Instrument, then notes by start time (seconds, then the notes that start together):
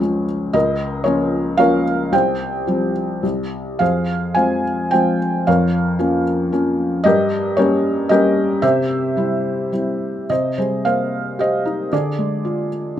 felt piano
Already playing: C#2 C#4 F4 G#4 C#5
0.00 F3 G#3 C#4
0.53 C#2 A#4 D#5
1.04 F3 A#3 C#4 F4 A#4 C#5
1.57 F3 A#3 C#4 A#4 C#5 F5
2.12 C2 C5 G5
2.67 F3 G3 C4
3.23 C2
3.79 F2 G#4 C5 F5
4.35 F3 G#3 C4 C5 F5 G#5
4.91 F3 G#3 C4 C5 G5
5.47 F2 A#4 C#5 F5
5.99 F3 A#3 C#4
6.52 F3 A#3 C#4
7.04 G2 G4 A#4 D#5
7.57 G3 A#3 C#4 G4 A#4 C#5
8.09 G3 A#3 C#4 G4 A#4 D#5
8.62 C3 G4 C5 E5
9.17 G3 C4 E4
9.72 G3 C4 E4
10.30 C3 C5 D#5
10.58 G3 G#4 C5
10.85 A#3 C5 F5
11.39 G4 C5 D#5
11.65 D#4
11.93 D3 G#4 D5
12.19 G#3
12.45 F4